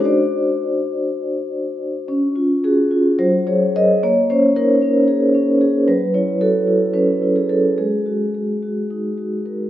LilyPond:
\new Staff \with { instrumentName = "Vibraphone" } { \time 7/8 \key ges \lydian \tempo 4 = 108 << { d''2 r4. | r4 aes'4 c''8 des''8 ees''8 | des''8 c''8 bes'2~ bes'8 | ces''8 des''8 a'4 ces''8. aes'16 a'8 |
aes'2 r4. | } \\ { <d' fis' c''>2.~ <d' fis' c''>8 | des'8 f'8 ges'8 f'8 ges8 aes'8 <aes' bes'>8 | bes8 des'8 ees'8 des'8 aes'8 des'8 aes'8 | ges8 fes'8 ges'8 fes'8 des'8 fes'8 aes'8 |
aes8 ges'8 aes'8 ges'8 ees'8 ges'8 bes'8 | } >> }